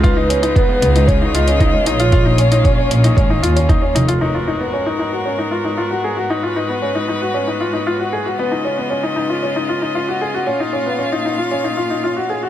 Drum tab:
CC |----------------|----------------|x---------------|----------------|
HH |x-xxx-xxx-xxx-xx|x-xxx-xxx-xxx-xx|----------------|----------------|
BD |o---o---o---o---|o---o---o---o---|----------------|----------------|

CC |----------------|----------------|
HH |----------------|----------------|
BD |----------------|----------------|